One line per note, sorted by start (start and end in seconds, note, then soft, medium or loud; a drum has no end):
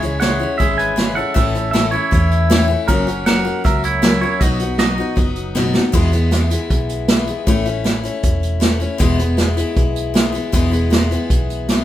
0.00 0.44 C#2 medium
0.00 0.21 E4 soft
0.00 0.19 C#5 medium
0.00 0.19 G#5 medium
0.00 closed hi-hat medium
0.04 0.21 G#3 soft
0.04 0.21 C#4 soft
0.20 0.40 C#3 medium
0.20 0.41 E3 medium
0.20 0.41 G#3 medium
0.20 0.40 C#4 medium
0.20 0.38 E4 medium
0.20 0.57 C#5 medium
0.20 0.60 F#5 medium
0.20 snare loud
0.20 closed hi-hat medium
0.39 0.59 G#3 soft
0.39 0.60 C#4 soft
0.39 0.59 E4 medium
0.58 1.20 G#1 medium
0.58 0.96 E3 medium
0.58 0.96 G#3 medium
0.58 0.98 C#4 medium
0.58 0.77 G#4 medium
0.58 0.78 E5 medium
0.58 kick loud
0.58 closed hi-hat medium
0.62 0.97 E4 medium
0.78 1.15 B4 medium
0.78 1.15 G#5 loud
0.78 closed hi-hat medium
0.96 1.16 C#3 medium
0.96 1.16 E3 medium
0.96 1.17 G#3 medium
0.96 1.17 C#4 medium
0.96 1.15 E4 medium
0.96 snare loud
0.96 closed hi-hat medium
1.15 1.35 G#3 soft
1.15 1.35 C#4 soft
1.15 1.35 E4 medium
1.15 1.35 A4 medium
1.15 1.34 F#5 loud
1.34 1.97 A1 medium
1.34 1.54 A2 medium
1.34 1.54 E3 medium
1.34 1.55 A3 medium
1.34 1.55 C#4 medium
1.34 1.53 E4 medium
1.34 1.71 A4 medium
1.34 1.70 E5 loud
1.34 kick loud
1.34 closed hi-hat medium
1.55 1.73 A3 soft
1.55 1.74 C#4 soft
1.55 1.74 E4 soft
1.55 closed hi-hat medium
1.71 1.93 A2 medium
1.71 1.93 E3 medium
1.71 1.93 A3 medium
1.71 1.92 C#4 medium
1.71 1.91 E4 medium
1.71 1.91 A4 medium
1.71 1.91 E5 medium
1.71 snare loud
1.71 closed hi-hat medium
1.91 2.11 A3 soft
1.91 2.12 C#4 medium
1.91 2.11 E4 medium
1.91 2.65 E4 medium
1.91 2.64 C#5 medium
2.11 2.73 E2 medium
2.11 2.50 E3 medium
2.11 2.50 A3 medium
2.11 2.51 C#4 medium
2.11 2.51 E4 medium
2.11 kick loud
2.11 closed hi-hat medium
2.31 closed hi-hat medium
2.50 2.69 A2 medium
2.50 2.69 E3 loud
2.50 2.70 A3 loud
2.50 2.69 C#4 loud
2.50 2.67 E4 loud
2.50 snare loud
2.50 closed hi-hat medium
2.68 2.89 A3 soft
2.68 2.88 C#4 medium
2.68 2.88 E4 medium
2.88 3.49 F#1 medium
2.88 3.07 F#2 medium
2.88 3.08 C#3 medium
2.88 3.07 F#3 medium
2.88 3.08 A#3 medium
2.88 3.24 C#4 medium
2.88 3.07 C#4 medium
2.88 3.06 F#4 loud
2.88 3.26 A#4 medium
2.88 kick loud
2.88 closed hi-hat medium
3.07 3.26 F#3 soft
3.07 3.26 A#3 soft
3.07 3.26 C#4 medium
3.07 3.26 F#4 medium
3.07 closed hi-hat medium
3.26 3.45 F#2 medium
3.26 3.45 C#3 medium
3.26 3.46 F#3 medium
3.26 3.46 A#3 medium
3.26 3.45 C#4 medium
3.26 3.44 F#4 medium
3.26 3.62 A#4 medium
3.26 3.62 F#5 loud
3.26 snare medium
3.26 closed hi-hat medium
3.45 3.63 F#3 soft
3.45 3.65 A#3 soft
3.45 3.65 C#4 medium
3.45 3.64 F#4 medium
3.64 4.26 C#2 medium
3.64 4.02 F#3 medium
3.64 4.02 A#3 medium
3.64 4.03 C#4 medium
3.64 4.03 F#4 medium
3.64 3.83 A#4 medium
3.64 3.84 E5 medium
3.64 kick loud
3.64 closed hi-hat medium
3.83 4.20 E4 medium
3.83 4.20 C#5 medium
3.83 closed hi-hat medium
4.02 4.21 F#2 medium
4.02 4.22 C#3 medium
4.02 4.22 F#3 medium
4.02 4.22 A#3 medium
4.02 4.22 C#4 medium
4.02 4.20 F#4 medium
4.02 snare loud
4.02 closed hi-hat medium
4.21 4.41 F#3 soft
4.21 4.42 A#3 soft
4.21 4.41 C#4 soft
4.21 4.40 E4 medium
4.21 4.41 F#4 soft
4.21 4.40 C#5 medium
4.40 5.01 B1 medium
4.40 4.60 B2 medium
4.40 4.61 F#3 medium
4.40 4.61 B3 medium
4.40 4.61 D#4 medium
4.40 4.76 F#4 medium
4.40 4.59 F#4 medium
4.40 4.78 D#5 medium
4.40 kick loud
4.40 closed hi-hat medium
4.59 4.79 B3 soft
4.59 4.79 D#4 soft
4.59 4.79 F#4 medium
4.59 closed hi-hat medium
4.78 4.98 B2 medium
4.78 4.98 F#3 medium
4.78 4.99 B3 medium
4.78 4.99 D#4 medium
4.78 5.15 F#4 medium
4.78 4.97 F#4 medium
4.78 5.14 D#5 medium
4.78 snare loud
4.78 closed hi-hat medium
4.98 5.16 B3 soft
4.98 5.17 D#4 medium
4.98 5.17 F#4 medium
5.16 5.78 F#1 medium
5.16 5.54 F#3 medium
5.16 5.54 B3 medium
5.16 5.55 D#4 medium
5.16 5.56 F#4 medium
5.16 kick loud
5.16 closed hi-hat medium
5.36 closed hi-hat medium
5.55 5.74 B2 medium
5.55 5.74 F#3 medium
5.55 5.74 B3 medium
5.55 5.75 D#4 loud
5.55 5.72 F#4 loud
5.55 snare medium
5.74 5.93 B3 soft
5.74 5.94 D#4 soft
5.74 5.93 F#4 medium
5.74 snare medium
5.92 6.12 E2 medium
5.92 6.54 E2 medium
5.92 6.12 B2 medium
5.92 6.13 E3 medium
5.92 6.12 G#3 loud
5.92 6.12 B3 loud
5.92 6.11 E4 loud
5.92 kick loud
5.92 crash medium
6.12 6.30 E3 soft
6.12 6.31 G#3 soft
6.12 6.32 B3 medium
6.12 6.31 E4 medium
6.12 closed hi-hat medium
6.31 6.51 E3 medium
6.31 6.51 G#3 medium
6.31 6.50 B3 medium
6.31 6.49 E4 medium
6.31 snare medium
6.31 closed hi-hat medium
6.50 7.08 E3 medium
6.50 7.08 G#3 medium
6.50 7.08 B3 medium
6.50 7.11 E4 medium
6.50 closed hi-hat medium
6.70 7.31 B1 medium
6.70 kick loud
6.70 closed hi-hat medium
6.89 closed hi-hat medium
7.08 7.28 E3 medium
7.08 7.28 G#3 medium
7.08 7.27 B3 medium
7.08 7.25 E4 medium
7.08 snare loud
7.08 closed hi-hat medium
7.26 7.47 E3 soft
7.26 7.47 G#3 medium
7.26 7.47 B3 medium
7.26 7.46 E4 soft
7.26 closed hi-hat medium
7.47 8.08 A1 medium
7.47 7.66 A2 medium
7.47 7.66 E3 medium
7.47 7.66 A3 loud
7.47 7.66 C#4 loud
7.47 7.64 E4 medium
7.47 kick loud
7.47 closed hi-hat medium
7.66 7.85 A3 soft
7.66 7.85 C#4 medium
7.66 7.85 E4 medium
7.66 closed hi-hat medium
7.84 8.04 E3 medium
7.84 8.04 A3 medium
7.84 8.04 C#4 medium
7.84 8.02 E4 medium
7.84 snare medium
7.84 closed hi-hat medium
8.04 8.60 A3 medium
8.04 8.61 C#4 medium
8.04 8.63 E4 medium
8.04 closed hi-hat medium
8.23 8.84 E1 medium
8.23 kick loud
8.23 closed hi-hat medium
8.43 closed hi-hat medium
8.60 8.80 E3 medium
8.60 8.80 A3 medium
8.60 8.80 C#4 medium
8.60 8.79 E4 medium
8.60 snare loud
8.60 closed hi-hat medium
8.80 9.00 A3 soft
8.80 9.00 C#4 medium
8.80 8.99 E4 medium
8.80 closed hi-hat medium
8.98 9.61 E1 medium
8.98 9.18 E2 medium
8.98 9.19 B2 medium
8.98 9.19 E3 medium
8.98 9.19 G#3 loud
8.98 9.18 B3 loud
8.98 9.17 E4 loud
8.98 kick loud
8.98 closed hi-hat medium
9.18 9.36 E3 soft
9.18 9.37 G#3 medium
9.18 9.38 B3 medium
9.18 9.38 E4 medium
9.18 closed hi-hat medium
9.37 9.57 E3 medium
9.37 9.57 G#3 medium
9.37 9.57 B3 medium
9.37 9.56 E4 medium
9.37 snare loud
9.37 closed hi-hat medium
9.57 10.13 E3 soft
9.57 10.14 G#3 medium
9.57 10.16 B3 medium
9.57 10.14 E4 medium
9.57 closed hi-hat medium
9.76 10.37 B1 medium
9.76 kick loud
9.76 closed hi-hat medium
9.96 closed hi-hat medium
10.14 10.33 E3 medium
10.14 10.34 G#3 medium
10.14 10.33 B3 medium
10.14 10.31 E4 medium
10.14 snare loud
10.14 closed hi-hat loud
10.32 10.52 E3 soft
10.32 10.53 G#3 soft
10.32 10.53 B3 medium
10.32 10.52 E4 medium
10.32 closed hi-hat medium
10.52 11.14 E1 medium
10.52 10.72 E2 medium
10.52 10.72 B2 medium
10.52 10.72 E3 medium
10.52 10.72 G#3 medium
10.52 10.71 B3 loud
10.52 10.70 E4 medium
10.52 kick loud
10.52 closed hi-hat medium
10.71 10.89 E3 soft
10.71 10.90 G#3 medium
10.71 10.91 B3 medium
10.71 10.91 E4 medium
10.71 closed hi-hat medium
10.90 11.10 E3 medium
10.90 11.10 G#3 medium
10.90 11.11 B3 medium
10.90 11.10 E4 medium
10.90 snare medium
10.90 closed hi-hat medium
11.11 11.67 E3 soft
11.11 11.68 G#3 medium
11.11 11.70 B3 medium
11.11 11.68 E4 medium
11.11 closed hi-hat medium
11.30 11.84 B1 medium
11.30 kick loud
11.30 closed hi-hat medium
11.50 closed hi-hat medium
11.69 11.84 E3 medium
11.69 11.84 G#3 medium
11.69 11.84 B3 medium
11.69 11.84 E4 medium
11.69 snare loud
11.69 closed hi-hat medium